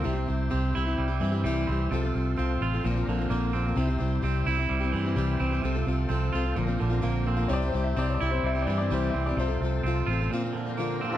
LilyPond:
<<
  \new Staff \with { instrumentName = "Upright piano" } { \time 4/4 \key c \mixolydian \tempo 4 = 129 r1 | r1 | r1 | r1 |
\tuplet 3/2 { <des'' d''>8 c''8 e''8 d''8 <des'' d''>8 c''8 e''8 d''8 d''8 c''8 e''8 d''8 } | c''2 r2 | }
  \new Staff \with { instrumentName = "Tonewheel organ" } { \time 4/4 \key c \mixolydian <e' g' c''>1 | <f' a' c''>2 <d' bes' c''>2 | <e' g' c''>1 | <f' a' c''>2 <d' bes' c''>2 |
<e' g' c''>1 | <f' a' c''>2 <d' bes' c''>2 | }
  \new Staff \with { instrumentName = "Steel-string acoustic guitar" } { \time 4/4 \key c \mixolydian <c g c' e' g'>16 <c' e' g'>16 <g c' e' g'>8 <c g c' e' g'>8 <g c' e' g'>16 <c' e' g'>8 <c' e' g'>16 <g c' e' g'>16 <c' e' g'>16 <c g c' e' g'>8 <g c' e' g'>8 | <c f c' f' a'>16 <c' f' a'>16 <f c' f' a'>8 <c f c' f' a'>8 <f c' f' a'>16 <c' f' a'>16 <bes, d f bes c' f'>16 <f bes c' f'>16 <f bes c' f'>16 <f bes c' f'>16 <bes, d f bes c' f'>8 <f bes c' f'>16 <f bes c' f'>16 | <c g c' e' g'>16 <c' e' g'>16 <g c' e' g'>8 <c g c' e' g'>8 <g c' e' g'>16 <c' e' g'>8 <c' e' g'>16 <g c' e' g'>16 <c' e' g'>16 <c g c' e' g'>8 <g c' e' g'>16 <c' e' g'>16 | <c f c' f' a'>16 <c' f' a'>16 <f c' f' a'>8 <c f c' f' a'>8 <f c' f' a'>16 <c' f' a'>16 <bes, d f bes c' f'>16 <f bes c' f'>16 <f bes c' f'>16 <f bes c' f'>16 <bes, d f bes c' f'>8 <f bes c' f'>16 <f bes c' f'>16 |
<c g c' e' g'>16 <c' e' g'>16 <g c' e' g'>8 <c g c' e' g'>8 <g c' e' g'>16 <c' e' g'>8 <c' e' g'>16 <g c' e' g'>16 <c' e' g'>16 <c g c' e' g'>8 <g c' e' g'>16 <c' e' g'>16 | <c f c' f' a'>16 <c' f' a'>16 <f c' f' a'>8 <c f c' f' a'>8 <f c' f' a'>16 <c' f' a'>16 <bes, d f bes c' f'>16 <f bes c' f'>16 <f bes c' f'>16 <f bes c' f'>16 <bes, d f bes c' f'>8 <f bes c' f'>16 <c' f'>16 | }
  \new Staff \with { instrumentName = "Clean electric guitar" } { \clef bass \time 4/4 \key c \mixolydian c4 c'8 e'8 g8 e8 g8 c'8 | c4 c'8 f'8 bes,8 d8 bes8 c'8 | c4 c'8 e'8 g8 e8 g8 c'8 | c4 c'8 f'8 bes,8 d8 bes8 c'8 |
c4 c'8 e'8 g8 e8 g8 c'8 | c4 c'8 f'8 bes,8 d8 bes8 c'8 | }
  \new Staff \with { instrumentName = "Fingered electric bass" } { \clef bass \time 4/4 \key c \mixolydian c,8 c,8 c,8 c,8 c,8 g,8 c,8 c,8 | c,8 c,8 c,8 a,,8 bes,,8 bes,,8 bes,,4 | c,8 c,8 c,8 c,8 c,8 g,8 c,8 c,8 | c,8 c,8 c,8 c,8 bes,,8 bes,,8 bes,,4 |
c,8 c,8 c,8 c,8 c,8 g,8 c,8 c,8 | c,8 c,8 c,8 a,,8 r2 | }
>>